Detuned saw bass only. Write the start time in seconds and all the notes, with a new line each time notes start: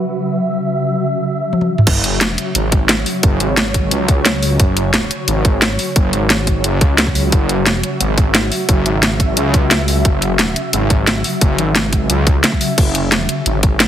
1.87 F#1
2.55 G#1
3.23 F#1
3.40 G#1
3.91 C#2
4.60 F#1
5.28 G#1
5.96 F#1
6.13 G#1
6.64 F#1
6.81 C#2
7.32 F#1
8.01 G#1
8.69 F#1
8.86 G#1
9.37 C#2
10.05 F#1
10.73 G#1
11.41 F#1
11.58 G#1
12.10 C#2
12.78 F#1
13.46 G#1